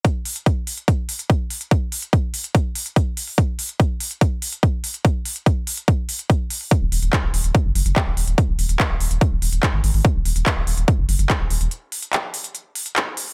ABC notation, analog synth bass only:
X:1
M:4/4
L:1/16
Q:1/4=144
K:Ebm
V:1 name="Analog synth bass" clef=bass
z16 | z16 | z16 | z16 |
z E,,, E,,, E,,, z E,,, E,,, E,,, z G,,, G,,, G,,, z E,,, E,,, E,,, | z E,,, E,,, E,,, z E,,, E,,, E,,, z E,,, E,,, E,,, z A,,, A,,, A,,, | z E,,, E,,, E,,, z E,,, E,,, E,,, z G,,, G,,, G,,, z E,,, E,,, E,,, | z16 |]